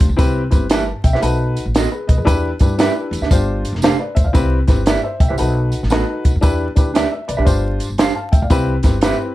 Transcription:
0.00 upright bass F1, kick, closed hi-hat
0.09 upright bass C#2
0.17 upright bass C2, upright piano C4 E4 G4 B4, kick, closed hi-hat, tambourine
0.50 upright bass G1, upright piano C4 E4 G4 B4, kick, closed hi-hat, tambourine
0.70 clean electric guitar E4 G4 B4 E5, upright piano A5, snare, closed hi-hat, tambourine
1.04 upright bass B1, upright piano E5 G5, kick, closed hi-hat, tambourine
1.13 clean electric guitar E4 G4 B4 E5, upright piano C5 E5, snare
1.21 upright bass B1, upright piano D#4 F#4 A4 B4, closed hi-hat, tambourine
1.56 closed hi-hat, tambourine
1.66 upright bass A1
1.75 clean electric guitar B3 F#4 A4 D#5, snare, closed hi-hat, tambourine
1.92 upright piano G#4 B4
2.07 upright bass B1, upright piano B4 D#5, kick, closed hi-hat, tambourine
2.18 upright bass F2, upright piano G#4 B4
2.25 upright bass E2, upright piano D4 E4 G4 B4, kick, closed hi-hat, tambourine
2.59 upright bass G2, upright piano D4 E4 G4 B4, kick, closed hi-hat, tambourine
2.78 upright piano D4 E4 G4 B4, clean electric guitar D4 G4 B4 E5, snare, closed hi-hat, tambourine
3.11 upright bass E2, closed hi-hat, tambourine
3.21 upright bass D2, clean electric guitar D4 G4 B4 E5, snare
3.31 upright bass G1, upright piano D4 F4 G4 C5, kick, closed hi-hat, tambourine
3.65 closed hi-hat, tambourine
3.73 upright bass F1, snare
3.82 clean electric guitar D4 G4 C5 F5, upright piano A4 C5, snare, closed hi-hat, tambourine
3.99 upright piano B4 D5
4.15 upright bass F1, upright piano C5 E5, kick, closed hi-hat, tambourine
4.24 upright bass C#2, upright piano D5 F5
4.33 upright bass C2, upright piano C4 E4 G4 B4, kick, closed hi-hat, tambourine
4.67 upright bass G1, upright piano C4 E4 G4 B4, kick, snare, closed hi-hat, tambourine
4.86 clean electric guitar E4 G4 B4 E5, upright piano B4 D5, snare, closed hi-hat, tambourine
5.04 upright piano C5 E5
5.20 upright bass B1, upright piano E5 G5, kick, closed hi-hat, tambourine
5.29 upright bass C2, clean electric guitar E4 G4 B4 E5, upright piano C5 E5
5.37 upright bass B1, upright piano D#4 F#4 A4 B4, closed hi-hat, tambourine
5.72 closed hi-hat, tambourine
5.83 upright bass A1, snare
5.90 clean electric guitar B3 F#4 A4 D#5, upright piano D#4 F#4 A4 B4, snare, closed hi-hat, tambourine
6.25 upright bass B1, kick, closed hi-hat, tambourine
6.36 upright bass F2
6.41 upright bass E2, upright piano D4 E4 G4 B4, kick, closed hi-hat, tambourine
6.75 upright bass D2, upright piano D4 E4 G4 B4, kick, closed hi-hat, tambourine
6.94 clean electric guitar D4 G4 B4 E5, upright piano B4 D5, snare, closed hi-hat, tambourine
7.12 upright piano E5
7.28 upright bass C2, upright piano B4 D5, closed hi-hat, tambourine
7.37 upright bass B1, clean electric guitar D4 G4 B4 E5, upright piano G4 B4
7.45 upright bass G1, upright piano D4 F4 G4 C5, kick, closed hi-hat, tambourine
7.80 closed hi-hat, tambourine
7.90 upright bass G1
7.98 clean electric guitar D4 G4 C5 F5, upright piano A5 C6, snare, closed hi-hat, tambourine
8.15 upright piano F5 A5
8.32 upright bass F1, upright piano E5 G5, kick, closed hi-hat, tambourine
8.42 upright bass C#2, upright piano D5 F5
8.50 upright bass C2, upright piano C4 E4 G4 B4, kick, closed hi-hat, tambourine
8.83 upright bass G1, upright piano C4 E4 G4 B4, kick, snare, closed hi-hat, tambourine
9.01 upright piano C4 E4 G4 B4, clean electric guitar E4 G4 B4 E5, snare, closed hi-hat, tambourine

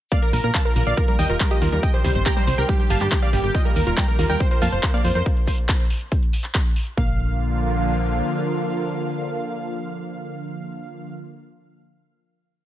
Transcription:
0.11 synth arpeggio sound A#3, supersaw synth D5 F5, kick, closed hi-hat, shaker
0.22 supersaw synth A#4, closed hi-hat, shaker
0.33 fm bass A#1, synth arpeggio sound A#4, supersaw synth A#4, open hi-hat, shaker
0.44 fm bass A#2, synth arpeggio sound A#3, supersaw synth A#4, closed hi-hat, shaker
0.54 supersaw synth F5 A5, kick, clap, closed hi-hat, shaker
0.65 supersaw synth A#4, synth arpeggio sound A#4, closed hi-hat, shaker
0.75 fm bass A#1, synth arpeggio sound A#3, supersaw synth A#4, open hi-hat, shaker
0.87 fm bass A#1, supersaw synth D5 F5, closed hi-hat, shaker
0.97 synth arpeggio sound F4, supersaw synth A#4, kick, closed hi-hat, shaker
1.08 synth arpeggio sound G3, supersaw synth A#4, closed hi-hat, shaker
1.19 fm bass D#2, supersaw synth D#5 G5, open hi-hat, shaker
1.29 fm bass D#1, synth arpeggio sound F4, supersaw synth A#4, closed hi-hat, shaker
1.40 synth arpeggio sound G3, supersaw synth A#4, kick, clap, closed hi-hat, shaker
1.51 supersaw synth G4 D#5, closed hi-hat, shaker
1.62 fm bass D#2, synth arpeggio sound F4, supersaw synth A#4, open hi-hat, shaker
1.72 fm bass D#2, synth arpeggio sound G3, supersaw synth A#4, closed hi-hat, shaker
1.83 supersaw synth D#5 G5, kick, closed hi-hat, shaker
1.94 synth arpeggio sound G4, supersaw synth C5, closed hi-hat, shaker
2.04 fm bass C2, synth arpeggio sound G3, supersaw synth C5, kick, open hi-hat, shaker
2.15 fm bass G1, supersaw synth C5, shaker
2.25 synth arpeggio sound G4, supersaw synth G5 A#5, kick, clap, closed hi-hat, shaker
2.36 synth arpeggio sound G3, supersaw synth C5, closed hi-hat, shaker
2.47 fm bass C2, supersaw synth C5, open hi-hat, shaker
2.58 fm bass C2, synth arpeggio sound G4, supersaw synth A#4 G5, closed hi-hat, shaker
2.69 synth arpeggio sound G3, supersaw synth G4, kick, closed hi-hat, shaker
2.80 supersaw synth G4, closed hi-hat, shaker
2.90 fm bass G1, synth arpeggio sound G4, supersaw synth F5 A5, open hi-hat, shaker
3.00 fm bass G2, synth arpeggio sound G3, supersaw synth G4, clap, shaker
3.11 supersaw synth G4, kick, clap, closed hi-hat, shaker
3.22 synth arpeggio sound G4, supersaw synth D5 F5, closed hi-hat, shaker
3.33 fm bass G1, synth arpeggio sound G3, supersaw synth G4, open hi-hat, shaker
3.44 fm bass G1, supersaw synth G4, closed hi-hat, shaker
3.54 synth arpeggio sound F4, supersaw synth D#5 G5, kick, closed hi-hat, shaker
3.65 synth arpeggio sound G3, supersaw synth A#4, closed hi-hat, shaker
3.75 fm bass D#2, supersaw synth A#4, open hi-hat, shaker
3.86 fm bass D#1, synth arpeggio sound F4, supersaw synth A#4, shaker
3.97 synth arpeggio sound G3, supersaw synth G5 A#5, kick, clap, closed hi-hat, shaker
4.08 supersaw synth A#4, closed hi-hat, shaker
4.19 fm bass D#2, synth arpeggio sound F4, supersaw synth A#4, open hi-hat, shaker
4.29 fm bass D#2, synth arpeggio sound G3, supersaw synth A#4 G5, closed hi-hat, shaker
4.40 supersaw synth C5, kick, closed hi-hat, shaker
4.51 synth arpeggio sound A#4, supersaw synth C5, closed hi-hat, shaker
4.62 fm bass F2, synth arpeggio sound A#3, supersaw synth F5 A5, open hi-hat, shaker
4.72 fm bass F1, supersaw synth C5, closed hi-hat, shaker
4.83 synth arpeggio sound A#4, supersaw synth C5, kick, clap, closed hi-hat, shaker
4.94 synth arpeggio sound A#3, supersaw synth D5 F5, closed hi-hat, shaker
5.04 fm bass F2, supersaw synth C5, open hi-hat, shaker
5.15 fm bass F2, synth arpeggio sound A#4, supersaw synth C5, closed hi-hat, shaker
5.26 kick, closed hi-hat
5.37 closed hi-hat
5.47 kick, open hi-hat
5.58 closed hi-hat
5.69 kick, clap, closed hi-hat
5.80 closed hi-hat
5.90 open hi-hat
6.01 closed hi-hat
6.12 kick, closed hi-hat
6.23 closed hi-hat
6.33 open hi-hat
6.44 clap, closed hi-hat
6.55 kick, clap, closed hi-hat
6.65 closed hi-hat
6.76 open hi-hat
6.87 closed hi-hat
6.97 fm bass A#1, analog synth pad D3 F3 A#3 F4, synth arpeggio sound A#3, supersaw synth F5, kick

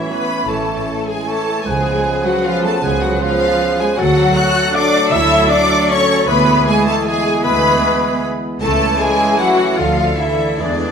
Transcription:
Already playing: cello section E3, bassoon E3, trombone section E3 A3, french horn section C#4 E4, viola section E4, violin section E4 E5, oboe C#5, flute section E5
0.11 cello section B3, viola section B4, violin section B4 B5, flute section B5
0.48 double bass section A1, bassoon E3, cello section A3, viola section A4, violin section A4 A5, oboe C#5, flute section A5
1.08 cello section G#3, viola section G#4, violin section G#4 G#5, flute section G#5
1.28 bassoon E3, cello section A3, viola section A4, violin section A4 A5, oboe C#5, flute section A5
1.65 double bass section C#2, trombone section F3 B3, bassoon F3, cello section G#3, french horn section C#4 G#4, viola section G#4, violin section G#4 G#5, oboe B4, flute section G#5
2.24 cello section F#3, viola section F#4, violin section F#4 F#5, flute section F#5
2.45 cello section F3, bassoon F3, viola section F4, violin section F4 F5, oboe B4, flute section F5
2.64 cello section A3, viola section A4, violin section A4 A5, flute section A5
2.83 double bass section C#2, bassoon F3, cello section G#3, viola section G#4, violin section G#4 G#5, oboe B4, flute section G#5
3.01 cello section F#3, viola section F#4, violin section F#4 F#5, flute section F#5
3.14 violin section F#5
3.20 cello section F3, bassoon F3, viola section F4, violin section F4 F5, oboe B4, flute section F5
3.79 cello section G#3, viola section G#4, violin section G#4 G#5, flute section G#5
3.98 double bass section D2, bassoon F#3, trombone section F#3 A3, cello section F#3, french horn section A3 A4, violin section F#4 F#5, viola section F#4, oboe A4, flute section F#5
4.35 bassoon F#3, cello section F#4, oboe A4, violin section F#5 F#6, viola section F#5, flute section F#6
4.74 bassoon F#3, cello section D4, oboe A4, viola section D5, violin section D5 D6, flute section D6
5.11 double bass section D2, cello section E4, violin section E5 E6, viola section E5, flute section E6
5.50 bassoon F#3, cello section D4, oboe A4, viola section D5, violin section D5 D6, flute section D6
5.90 cello section C#4, viola section C#5, violin section C#5 C#6, flute section C#6
6.28 double bass section D2, trombone section E3 G#3, bassoon E3, french horn section B3 E4, cello section B3, oboe G#4, viola section B4, violin section B4 B5, flute section B5
6.66 cello section G#3, viola section G#4, violin section G#4 G#5, flute section G#5
6.86 cello section A3, violin section A4 A5, viola section A4, flute section A5
7.06 bassoon E3, cello section G#3, viola section G#4, oboe G#4, violin section G#4 G#5, flute section G#5
7.44 double bass section D2, bassoon E3, cello section B3, oboe G#4, viola section B4, violin section B4 B5, flute section B5
8.62 double bass section C#2, bassoon E3, trombone section E3 A3, cello section A3, french horn section C#4 E4, oboe E4, viola section A4, violin section A4 A5, flute section A5
9.00 cello section G#3, viola section G#4, violin section G#4 G#5, flute section G#5
9.40 cello section F#3, viola section F#4, violin section F#4 F#5, flute section F#5
9.77 double bass section D2, trombone section D3, bassoon D3, cello section F3, french horn section D4 A4, viola section F4, violin section F4 F5, oboe A4, flute section F5
10.17 cello section E3, viola section E4, violin section E4 E5, flute section E5
10.59 double bass section E2, cello section D3, trombone section E3 G#3, bassoon E3, french horn section B3 E4, violin section D4 D5, viola section D4, oboe G#4, flute section D5

